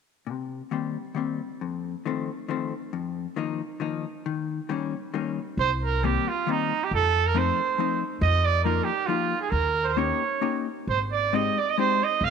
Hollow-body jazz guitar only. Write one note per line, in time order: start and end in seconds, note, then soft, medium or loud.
0.27 0.61 C3 medium
0.71 0.95 D#3 medium
0.71 0.96 G3 soft
0.71 0.96 A#3 soft
0.71 0.96 C4 medium
1.15 1.39 D#3 soft
1.15 1.40 G3 soft
1.15 1.40 A#3 soft
1.15 1.40 C4 soft
1.61 1.94 F2 medium
2.05 2.29 D#3 medium
2.05 2.29 F3 soft
2.05 2.29 A3 medium
2.05 2.29 C4 medium
2.48 2.72 D#3 soft
2.48 2.72 F3 soft
2.48 2.72 A3 soft
2.48 2.73 C4 medium
2.93 3.26 F2 medium
3.36 3.60 D#3 medium
3.36 3.61 F3 medium
3.36 3.60 A#3 medium
3.36 3.61 D#4 medium
3.80 4.04 D#3 medium
3.80 4.05 F3 medium
3.80 4.05 A#3 soft
3.80 4.05 D#4 medium
4.26 4.59 D#3 medium
4.69 4.93 D#3 medium
4.69 4.93 G3 medium
4.69 4.94 A#3 soft
4.69 4.94 C#4 medium
5.14 5.38 D#3 medium
5.14 5.38 G3 medium
5.14 5.39 A#3 medium
5.14 5.39 C#4 medium
6.03 6.27 D#3 medium
6.03 6.28 G3 medium
6.03 6.28 A#3 soft
6.03 6.28 C4 soft
6.47 6.71 D#3 medium
6.47 6.72 G3 soft
6.47 6.72 A#3 medium
6.47 6.72 C4 medium
7.34 7.59 F3 medium
7.34 7.59 A3 soft
7.34 7.59 C4 medium
7.34 7.60 D#4 medium
7.78 8.02 F3 soft
7.78 8.02 A3 soft
7.78 8.03 C4 medium
7.78 8.03 D#4 medium
8.65 8.89 F3 medium
8.65 8.89 A#3 soft
8.65 8.90 D#4 soft
8.65 8.90 F4 medium
9.08 9.33 F3 soft
9.08 9.33 A#3 soft
9.08 9.33 D#4 soft
9.08 9.33 F4 soft
9.97 10.21 A#3 medium
9.97 10.22 C#4 soft
9.97 10.22 D#4 medium
9.97 10.22 G4 medium
10.41 10.66 A#3 medium
10.41 10.67 C#4 soft
10.41 10.67 D#4 soft
10.41 10.67 G4 medium
11.33 11.57 G#3 medium
11.33 11.57 C4 medium
11.33 11.57 D#4 soft
11.33 11.58 G4 medium
11.78 12.01 G#3 medium
11.78 12.02 C4 medium
11.78 12.02 D#4 medium
11.78 12.02 G4 medium